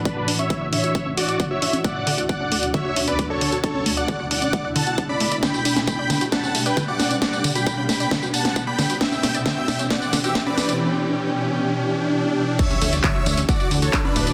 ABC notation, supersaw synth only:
X:1
M:4/4
L:1/16
Q:1/4=134
K:D
V:1 name="Supersaw synth"
[DB]2 z [ce]2 z [ce]3 z [Fd]2 z [ce]2 z | [df]3 z [df]3 z [ce]2 z [Bd]2 [Ac]2 z | [Ac]2 z [df]2 z [df]3 z [fa]2 z [db]2 z | [gb]3 z [gb]3 z [fa]2 z [Bg]2 [df]2 z |
[df]2 z [gb]2 z [gb]3 z [fa]2 z [gb]2 z | [eg]3 z [eg]3 z [df]2 z [Ge]2 [Bd]2 z | z16 | [ce]3 z [ce]3 z [Fd]2 z [Ac]2 [DB]2 z |]